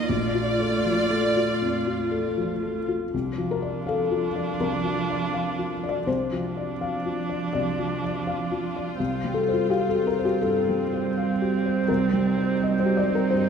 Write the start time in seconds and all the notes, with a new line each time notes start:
Already playing: A#2 F3 D#4 A#4
0.08 A#1 A3 F4 D5
0.35 F4
0.60 A4
0.85 F3
1.10 A4
1.36 F4
1.62 F2
1.87 F4
2.11 A4
2.37 F3
2.63 A4
2.88 F4
3.13 C2 F3 D4 F4
3.38 F3
3.51 A#4
3.62 D5
3.87 A4 F5
4.11 F4
4.36 D5
4.60 C2 A#4
4.84 F3
5.10 D5
5.34 F5
5.59 F4
5.84 D5
5.89 D5
6.07 C2 F3 D4 F4 C5
6.32 F3
6.57 D5
6.81 F5
7.06 F4
7.29 D5
7.53 C2 D5
7.79 F3
8.04 D5
8.27 F5
8.51 F4
8.76 D5
8.99 C2 G3 C4
9.24 G3
9.34 A4
9.49 C5
9.53 F4
9.70 G4 F5
9.89 A4
9.95 G4
10.07 A#4
10.19 C5
10.25 G4
10.41 G2 A4
10.69 G3
10.94 C5
11.17 F5
11.42 G4
11.66 C5
11.87 C2 D#4 A#4
12.13 G3
12.38 C5
12.62 D#5
12.80 C5
12.86 G4
12.97 D5
13.09 C5
13.15 A#4
13.31 G2 C5